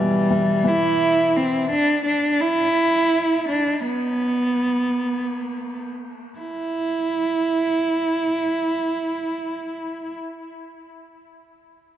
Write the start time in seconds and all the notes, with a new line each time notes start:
Already playing: B2 E3 G3
0.30 E3
0.64 E3 E4
1.37 C4
1.71 D4
2.05 D4
2.41 E4
3.48 D4
3.86 B3
6.39 E4